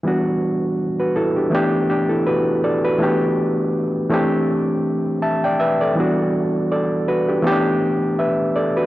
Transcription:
X:1
M:4/4
L:1/16
Q:"Swing 16ths" 1/4=81
K:Em
V:1 name="Reed electric piano"
z4 z [FB] [EA] [DG]2 z [DG] [EA] [FB]2 [Ad] [FB]- | [FB] z8 z3 [ea] [dg] [Be] [Ad]- | [Ad] z3 [Ad]2 [FB] [DG]2 z3 [Be]2 [Ad] [FB] |]
V:2 name="Reed electric piano"
[E,G,B,DF]4 z4 [E,A,B,DG]4 z4 | [E,A,B,DG]4 z2 [E,A,CDG]6 z4 | [E,G,B,DF]4 z4 [E,A,B,^CDG]4 z4 |]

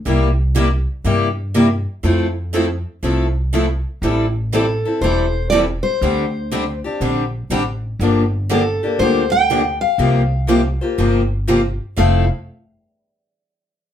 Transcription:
X:1
M:4/4
L:1/8
Q:"Swing" 1/4=121
K:F
V:1 name="Steel-string acoustic guitar"
z8 | z8 | z2 A2 c2 d c- | c3 z4 z |
z2 A2 c g2 f- | f6 z2 | f z6 z |]
V:2 name="Steel-string acoustic guitar"
[C,G,B,EG] z [C,G,B,EG] z [C,G,B,EG] z [C,G,B,EG] z | [F,A,CEA] z [F,A,CEA] z [F,A,CEA] z [F,A,CEA] z | [E,G,CEA] z [E,G,CEA] [CEA] [E,G,CEA] z [E,G,CEA] z | [D,G,CDG] z [D,G,CDG] [CDG] [D,G,CDG] z [D,G,CDG] z |
[D,F,B,DG] z [D,F,B,DG] [B,DG] [D,F,B,DG] z [D,F,B,DG] z | [C,F,B,FGc] z [C,F,B,FGc] [B,FGc] [C,F,B,FGc] z [C,F,B,FGc] z | [F,A,CEA] z6 z |]
V:3 name="Steel-string acoustic guitar"
[C,G,B,EG] z [C,G,B,EG] z [C,G,B,EG] z [C,G,B,EG] z | [F,CEA] z [F,CEA] z [F,CEA] z [F,CEA] z | [E,G,CEA] z [E,G,CEA] z [E,G,CEA] z [E,G,CEA] z | [D,G,CDG] z [D,G,CDG] z [D,G,CDG] z [D,G,CDG] z |
[D,F,B,DG] z [D,F,B,DG] z [D,F,B,DG] z [D,F,B,DG] z | [C,F,B,FG] z [C,F,B,FG] z [C,F,B,FG] z [C,F,B,FG] z | [F,CEA] z6 z |]
V:4 name="Upright bass" clef=bass
C,,4 G,,4 | F,,4 C,,4 | A,,,4 E,,,4 | D,,4 B,,,2 A,,,2 |
G,,,4 D,,4 | C,,4 G,,,4 | F,,, z6 z |]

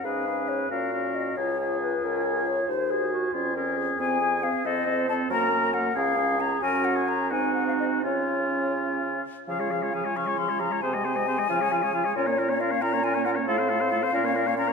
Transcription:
X:1
M:6/8
L:1/16
Q:3/8=91
K:C#mix
V:1 name="Flute"
e4 c2 e4 d2 | c4 B2 A4 c2 | ^B4 z8 | [K:Db] a4 f2 e4 =a2 |
b4 g2 f4 b2 | a2 g2 b2 a2 g f e2 | d6 z6 | f4 a2 d'2 c'2 b2 |
a12 | d4 f2 b2 a2 g2 | f8- f2 b2 |]
V:2 name="Oboe"
B2 B4 A2 A4 | G2 G6 G4 | z2 G4 G2 G4 | [K:Db] A2 A2 A2 =A2 A2 A2 |
B2 B2 B2 A2 A2 A2 | B3 A3 G6 | F8- F2 z2 | f d f d f d f d f d f d |
c e c e c e f d f d f d | B d B d B d B d B d B d | =A c A c A c B d B d B d |]
V:3 name="Clarinet"
G6 F6 | G6 c6 | ^B2 G2 F2 E2 A2 G2- | [K:Db] ^G6 c6 |
B4 z2 A6 | G6 E6 | F8- F z3 | A F A F A F A F A F A F |
A c A c A c F A F A F A | F D F D F D F D F D F D | F =A F A F A F D F D F D |]
V:4 name="French horn"
C2 C4 C2 C4 | E2 E6 E4 | z2 F4 C2 C4 | [K:Db] C2 C2 C2 C2 C2 C2 |
B,2 B,2 B,2 D2 D2 D2 | D6 C6 | D8- D2 z2 | F, A, F, A, F, A, F, A, F, A, F, A, |
C A, C A, C A, F, A, F, A, F, A, | D B, D B, D B, D B, D B, D B, | =A, C A, C A, C D B, D B, D B, |]
V:5 name="Bassoon" clef=bass
G,,6 A,,6 | C,,6 C,,6 | D,,6 E,,6 | [K:Db] F,,6 F,,6 |
G,,6 D,,6 | G,,6 A,,6 | D,8- D,2 z2 | D,6 D,6 |
C,6 D,6 | B,,6 B,,6 | =A,,6 B,,6 |]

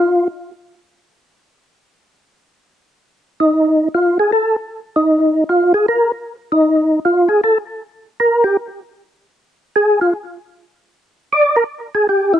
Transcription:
X:1
M:4/4
L:1/8
Q:"Swing" 1/4=155
K:Eblyd
V:1 name="Tonewheel organ"
F z6 z | z8 | z E3 F _A =A z | z E3 F _A B z |
z E3 F _A =A z | z2 B G z4 | z2 _A F z4 | z2 d B z _A G =E |]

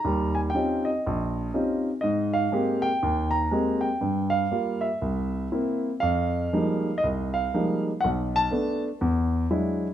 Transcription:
X:1
M:4/4
L:1/8
Q:"Swing" 1/4=121
K:Fm
V:1 name="Grand piano"
b a g e4 z | e f2 g2 b2 g- | g f2 _f4 z | f4 e f2 z |
^f =a2 z4 z |]
V:2 name="Grand piano"
[E,,G,]2 [CDEFG] z B,,,2 [CDEFG] z | A,,2 [A,B,CG] z E,,2 [A,B,CG] z | G,,2 [G,B,F] z C,,2 [B,C=E] z | F,,2 [F,G,A,B,E] z C,,2 [F,G,A,B,E] z |
=B,,,2 [=A,=B,=D] z =E,,2 [^F,^G,D=E] z |]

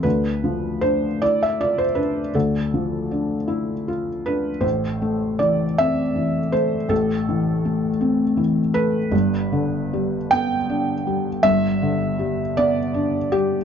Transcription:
X:1
M:6/8
L:1/16
Q:3/8=53
K:Ddor
V:1 name="Felt piano"
B4 c2 d e d c B2 | A8 z2 B2 | c4 d2 e4 c2 | A8 z2 B2- |
B6 g6 | e6 d4 G2 |]
V:2 name="Felt piano" clef=bass
[D,,D,]2 F,2 D2 E2 F2 D2 | [D,,D,]2 F,2 D2 E2 F2 D2 | [A,,,A,,]2 A,2 E,2 C2 E,2 A,2 | [A,,,A,,]2 E,2 A,2 C2 E,2 A,2 |
[G,,,G,,]2 D,2 G,2 B,2 D2 G,2 | [G,,,G,,]2 D,2 G,2 B,2 D2 G,2 |]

